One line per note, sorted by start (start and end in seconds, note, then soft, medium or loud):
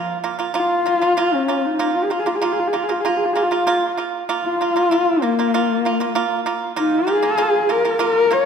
0.00 0.17 A#3 medium
0.00 0.18 F4 medium
0.24 0.36 A#3 medium
0.24 0.36 F4 medium
0.39 0.51 A#3 medium
0.39 0.52 F4 medium
0.54 0.79 A#3 medium
0.54 0.80 F4 medium
0.54 1.35 F4 loud
0.86 0.98 A#3 medium
0.86 0.99 F4 medium
1.01 1.14 A#3 medium
1.01 1.14 F4 medium
1.17 1.42 A#3 medium
1.17 1.42 F4 loud
1.34 1.67 C#4 medium
1.48 1.73 A#3 medium
1.48 1.73 F4 medium
1.65 1.96 D#4 medium
1.79 2.04 A#3 medium
1.79 2.04 F4 medium
1.95 2.05 F4 medium
2.04 2.14 G#4 medium
2.10 2.23 A#3 medium
2.10 2.23 F4 medium
2.10 2.21 F4 medium
2.19 2.29 G#4 medium
2.26 2.38 A#3 medium
2.26 2.39 F4 medium
2.26 2.37 F4 medium
2.35 2.45 G#4 medium
2.42 2.66 A#3 medium
2.42 2.67 F4 medium
2.42 2.54 F4 medium
2.53 2.61 G#4 medium
2.60 2.70 F4 medium
2.68 2.77 G#4 medium
2.73 2.85 A#3 medium
2.73 2.86 F4 medium
2.73 2.85 F4 medium
2.83 2.93 G#4 medium
2.89 3.01 A#3 medium
2.89 3.01 F4 medium
2.89 3.02 F4 medium
3.01 3.09 G#4 medium
3.05 3.29 A#3 medium
3.05 3.29 F4 medium
3.05 3.18 F4 medium
3.17 3.27 G#4 medium
3.25 3.35 F4 medium
3.33 3.48 A#3 medium
3.33 3.48 F4 medium
3.33 3.44 G#4 medium
3.43 3.94 F4 medium
3.51 3.63 A#3 medium
3.51 3.64 F4 medium
3.67 3.91 A#3 medium
3.67 3.91 F4 medium
3.97 4.22 A#3 medium
3.97 4.22 F4 medium
4.29 4.53 A#3 medium
4.29 4.54 F4 medium
4.45 5.23 F4 medium
4.61 4.72 A#3 medium
4.61 4.73 F4 medium
4.76 4.88 A#3 medium
4.76 4.88 F4 medium
4.91 5.16 A#3 medium
4.91 5.16 F4 medium
5.22 6.42 A#3 medium
5.22 5.34 A#3 medium
5.22 5.35 F4 medium
5.39 5.50 A#3 medium
5.39 5.51 F4 medium
5.54 5.78 A#3 medium
5.54 5.78 F4 medium
5.85 5.97 A#3 medium
5.85 5.97 F4 medium
6.00 6.12 A#3 medium
6.00 6.12 F4 medium
6.15 6.40 A#3 medium
6.15 6.40 F4 loud
6.46 6.71 A#3 medium
6.46 6.71 F4 medium
6.76 7.01 A#3 medium
6.76 7.10 D#4 medium
6.76 7.02 F4 loud
7.07 7.20 A#3 medium
7.07 7.20 F4 medium
7.07 7.73 G#4 loud
7.23 7.35 A#3 medium
7.23 7.35 F4 medium
7.38 7.63 A#3 medium
7.38 7.63 F4 medium
7.69 7.82 A#3 medium
7.69 7.82 F4 medium
7.69 8.01 A#4 medium
7.85 7.97 A#3 medium
7.85 7.97 F4 medium
7.99 8.25 A#3 loud
7.99 8.25 F4 loud
7.99 8.34 A#4 loud
8.30 8.43 A#3 medium
8.30 8.44 F4 medium
8.30 8.45 C#5 medium